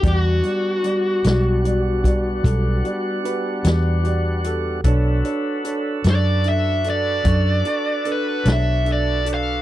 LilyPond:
<<
  \new Staff \with { instrumentName = "Lead electric guitar" } { \time 12/8 \key b \minor \tempo 4. = 50 fis'1 r2 | r4. d''8 e''8 d''4. b'8 e''8 d''8 eis''8 | }
  \new Staff \with { instrumentName = "Grand piano" } { \time 12/8 \key b \minor <g fis' d''>8 <g fis' d''>8 <g fis' d''>8 <g fis' d''>8 <g fis' d''>8 <g fis' d''>8 <g fis' a'>8 <g fis' d''>8 <fis' g' b'>8 <fis' g' d''>8 <fis' g' d''>8 <fis' g' a'>8 | <d' a' cis''>8 <d' a' cis''>8 <d' a' cis''>8 <d' a' cis'''>8 <d' a' e''>8 <d' a' d''>8 <d' a' cis'''>8 <d' a' cis'''>8 <d' a' b'>8 <d' a' cis''>8 <d' a' e''>8 <d' a' d''>8 | }
  \new Staff \with { instrumentName = "Tonewheel organ" } { \time 12/8 \key b \minor <g b d' fis''>1. | <d' fis' a' b'>1. | }
  \new Staff \with { instrumentName = "Fingered electric bass" } { \clef bass \time 12/8 \key b \minor e,8 r4 b,,4. b,,8 r4 e,4. | b,,8 r4 fis,4. fis,8 r4 b,,4. | }
  \new DrumStaff \with { instrumentName = "Drums" } \drummode { \time 12/8 <hh bd>8 hh8 hh8 <hh sn>8 hh8 <hh bd>8 <hh bd>8 hh8 hh8 <hh sn>8 hh8 hh8 | <hh bd>8 hh8 hh8 <hh sn>8 hh8 hh8 <hh bd>8 hh8 hh8 <hh sn>8 hh8 hh8 | }
>>